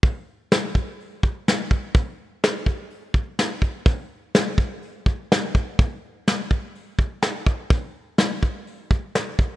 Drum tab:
HH |o---o---|o---o---|o---o---|o---o---|
SD |--o---o-|--o---o-|--o---o-|--o---o-|
BD |o--o-o-o|o--o-o-o|o--o-o-o|o--o-o-o|

HH |o---o---|
SD |--o---o-|
BD |o--o-o-o|